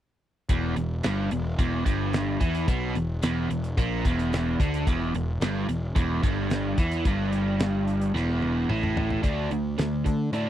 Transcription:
0.49 0.75 E1 medium
0.49 0.75 E2 loud
0.49 kick medium
0.49 closed hi-hat medium
0.76 1.02 E1 medium
0.76 0.98 E2 medium
0.76 closed hi-hat medium
1.03 1.30 G1 medium
1.03 1.31 G2 medium
1.03 snare loud
1.03 closed hi-hat medium
1.31 1.57 E1 medium
1.31 1.53 E2 medium
1.31 closed hi-hat medium
1.59 1.84 E1 loud
1.59 1.85 E2 loud
1.59 kick loud
1.59 closed hi-hat medium
1.86 2.37 G1 loud
1.86 2.40 G2 loud
1.86 kick medium
1.86 closed hi-hat medium
2.13 snare loud
2.13 closed hi-hat medium
2.40 2.66 E2 medium
2.40 2.67 E3 medium
2.40 kick loud
2.40 closed hi-hat medium
2.55 closed hi-hat medium
2.68 2.93 B1 medium
2.68 2.95 B2 loud
2.68 kick loud
2.68 closed hi-hat medium
2.95 3.21 E1 medium
2.95 3.17 E2 medium
2.95 closed hi-hat medium
3.23 3.48 E1 medium
3.23 3.49 E2 loud
3.23 snare loud
3.23 closed hi-hat medium
3.50 3.75 E1 medium
3.50 3.72 E2 medium
3.50 closed hi-hat medium
3.64 closed hi-hat medium
3.77 4.03 A#1 medium
3.77 4.04 A#2 loud
3.77 kick loud
3.77 closed hi-hat medium
4.05 4.56 E1 medium
4.05 4.59 E2 medium
4.05 kick loud
4.05 snare soft
4.05 closed hi-hat medium
4.19 closed hi-hat medium
4.33 snare loud
4.33 closed hi-hat medium
4.60 4.85 D2 medium
4.60 4.86 D3 loud
4.60 kick loud
4.60 closed hi-hat medium
4.74 closed hi-hat medium
4.87 5.12 E1 medium
4.87 5.14 E2 medium
4.87 kick loud
4.87 closed hi-hat medium
5.14 5.39 E1 medium
5.14 5.36 E2 medium
5.14 closed hi-hat medium
5.41 5.66 G1 medium
5.41 5.68 G2 loud
5.41 snare loud
5.41 closed hi-hat medium
5.69 5.94 E1 medium
5.69 5.90 E2 medium
5.69 closed hi-hat medium
5.95 6.21 E1 loud
5.95 6.22 E2 loud
5.95 kick loud
5.95 closed hi-hat medium
6.23 6.74 G1 loud
6.23 6.77 G2 loud
6.23 kick loud
6.23 closed hi-hat medium
6.50 snare loud
6.50 closed hi-hat medium
6.78 7.03 E2 medium
6.78 7.05 E3 medium
6.78 kick loud
6.78 closed hi-hat medium
6.92 closed hi-hat medium
7.05 8.10 G1 medium
7.05 8.14 G2 loud
7.05 kick loud
7.05 closed hi-hat medium
7.32 closed hi-hat medium
7.60 snare loud
7.60 closed hi-hat medium
7.87 closed hi-hat medium
8.01 closed hi-hat medium
8.14 8.65 E1 medium
8.14 8.68 E2 loud
8.14 snare medium
8.42 high tom medium
8.69 9.20 A1 medium
8.69 9.23 A2 medium
8.69 mid tom medium
8.83 mid tom medium
8.97 floor tom loud
9.10 floor tom medium
9.23 9.48 D2 medium
9.23 9.49 D3 medium
9.23 9.49 A3 medium
9.23 9.49 D4 medium
9.23 kick medium
9.23 closed hi-hat medium
9.51 9.75 D2 medium
9.51 9.76 D3 medium
9.51 9.76 A3 medium
9.51 closed hi-hat medium
9.78 10.03 D2 medium
9.78 10.03 D3 medium
9.78 10.03 A3 medium
9.78 snare loud
9.78 closed hi-hat medium
10.05 10.30 D3 medium
10.05 10.31 A3 medium
10.05 kick medium
10.05 closed hi-hat medium
10.32 10.49 A2 medium
10.32 10.49 D3 medium
10.32 10.49 A3 medium
10.32 10.49 D4 medium
10.32 closed hi-hat medium

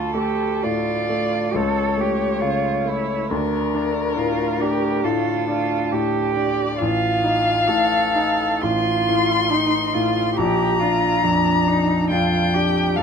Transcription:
0.00 1.51 D2 soft
0.00 0.15 F4 soft
0.00 0.65 A4 medium
0.14 0.92 A3 soft
0.14 0.65 G4 soft
0.64 1.37 A2 soft
0.64 1.56 F4 soft
0.64 1.57 D5 medium
1.09 1.54 A3 soft
1.54 3.27 C#2 soft
1.54 2.01 A4 medium
1.54 3.31 C#5 medium
1.97 2.68 A3 soft
1.97 2.43 G4 soft
2.41 3.14 C#3 soft
2.41 2.90 F4 medium
2.85 3.31 A3 soft
2.85 3.33 E4 medium
3.31 5.00 D2 medium
3.31 4.18 D4 medium
3.31 5.06 A#4 medium
3.74 4.43 D4 soft
4.16 4.87 A2 soft
4.16 4.63 F4 soft
4.60 5.31 D4 soft
4.60 5.06 G4 medium
5.04 5.74 A2 soft
5.04 5.48 F4 medium
5.04 6.34 A4 medium
5.48 6.17 D4 soft
5.48 5.93 F4 medium
5.92 6.62 A2 soft
5.92 6.78 G4 medium
6.35 6.79 D4 soft
6.35 6.80 D5 medium
6.78 8.59 A1 medium
6.78 7.69 F4 medium
6.78 8.63 F5 medium
7.24 7.95 D#4 soft
7.68 8.44 A2 soft
7.68 8.64 A4 medium
8.15 8.92 D#4 soft
8.61 10.34 A1 soft
8.61 9.51 F4 medium
8.61 10.38 C6 medium
9.09 9.78 A2 soft
9.50 9.95 D#4 medium
9.50 10.20 D#4 soft
9.93 10.37 A2 soft
9.93 10.35 F4 medium
10.36 12.07 A#1 medium
10.36 10.81 G4 medium
10.36 12.10 A#5 medium
10.80 11.50 D4 soft
10.80 11.25 F4 medium
11.23 11.93 F2 soft
11.23 11.69 D4 medium
11.67 12.36 D4 soft
11.67 12.12 D#4 medium
12.10 12.80 F2 soft
12.10 12.56 F4 medium
12.10 12.98 G5 medium
12.54 13.03 D4 soft
12.54 12.99 G4 medium
12.96 13.03 F2 soft
12.96 13.03 A4 medium
12.96 13.03 F5 medium

